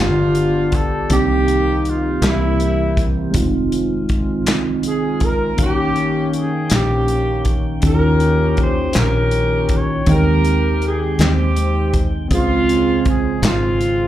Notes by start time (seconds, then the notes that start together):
Already playing: B3 G4
0.00 G1 G2 F3 B3 D4 F4 G4
0.35 closed hi-hat
0.72 A4, kick, closed hi-hat
1.09 C2 C3 C#3 A#3 C4 D#4 G4, kick, closed hi-hat
1.19 D#3
1.48 closed hi-hat
1.85 F4, closed hi-hat
2.21 C2 C3 C#3 A#3 C4 E4 G4, snare, clap, closed hi-hat
2.27 G3 A#3 E4
2.31 E3
2.60 closed hi-hat
2.97 kick, closed hi-hat
3.30 F1 D#3 G#3 C4 D#4 F4, closed hi-hat
3.34 C4 F4, kick
3.72 closed hi-hat
4.09 kick, closed hi-hat
4.47 C2, snare, clap, closed hi-hat
4.83 closed hi-hat
4.87 G#4
5.20 A#4, kick, closed hi-hat
5.55 D#2 D#3 A#3 C#4 D#4, kick, closed hi-hat
5.59 D#3 A#3 C#4 F4 F#4 G4
5.66 G5
5.96 closed hi-hat
6.33 closed hi-hat
6.38 G#4
6.70 A#1 A#3 G4, snare, clap, closed hi-hat
6.74 C#4
7.08 closed hi-hat
7.45 kick, closed hi-hat
7.82 D#2 D#3 A#3 C#4 D#4, kick, closed hi-hat
7.86 C#4 E4 G4 A#4
7.93 F4
8.20 closed hi-hat
8.57 kick, closed hi-hat
8.61 C5
8.93 A#1, snare, clap, closed hi-hat
8.98 C#4 G4 A#4
9.31 closed hi-hat
9.69 kick, closed hi-hat
9.74 C#5
10.05 D#2 D#3 G#3 C4 G5, kick, closed hi-hat
10.09 G#3 C4 D#4 G4 A#4 G5
10.45 closed hi-hat
10.82 G#4, closed hi-hat
11.19 D#2 C4 G4, snare, clap, closed hi-hat
11.56 closed hi-hat
11.94 kick, closed hi-hat
12.28 C#2 C#3 F3 G#3 C4 F4 G#4, kick, closed hi-hat
12.33 G#3 C4 F4 G#4
12.69 closed hi-hat
13.05 G#4, kick, closed hi-hat
13.42 G#1 G#3 C4 F4, snare, clap, closed hi-hat
13.81 closed hi-hat